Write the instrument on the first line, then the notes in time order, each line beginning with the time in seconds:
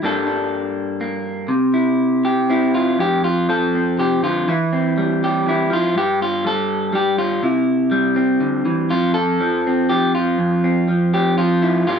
clean electric guitar
0.03 G2 G3 A#3 D4 A4
0.27 D4
1.01 A#3
1.48 C3
1.74 E4
2.25 G4
2.50 C4 E4
2.75 F4
2.99 F2 G4
3.24 F4
3.49 F3 A4
3.75 C4
3.99 C3 G4
4.23 D3 F4
4.48 E3 E4
4.73 C4
4.98 G3
5.24 G4
5.47 E3 E4
5.70 F3 F4
5.95 G2 G4
6.22 F4
6.44 G3 A4
6.93 G3 G4
7.18 F4
7.43 C3 E4
7.91 G3
8.16 C4
8.41 D3
8.65 E3
8.90 F2 F4
9.14 A4
9.41 F3
9.67 C4
9.89 F3 G4
10.15 F4
10.38 F2
10.64 C4
10.88 F3
11.14 G4
11.38 F3 F4
11.62 E4
11.87 G2 G3 A#3 D4 F4